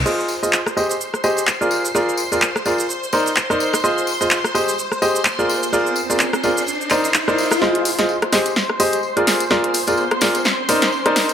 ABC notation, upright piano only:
X:1
M:4/4
L:1/16
Q:"Swing 16ths" 1/4=127
K:Fdor
V:1 name="Upright piano"
[FAce]2 z [FAce] z2 [GAce] z3 [GAce] z2 [FABd]2 z | [FABd]2 z [FABd] z2 [FABd] z3 [EBcd] z2 [EBcd]2 z | [FAce]2 z [FAce] z2 [GAce] z3 [GAce] z2 [FABd]2 z | [FABd]2 z [FABd] z2 [FABd] z3 [EBcd] z2 [EBcd]2 z |
[FAce]2 z [FAce] z2 [GAce] z3 [GAce] z2 [FABd]2 z | [FABd]2 z [FABd] z2 [FABd] z3 [EBcd] z2 [EBcd]2 z |]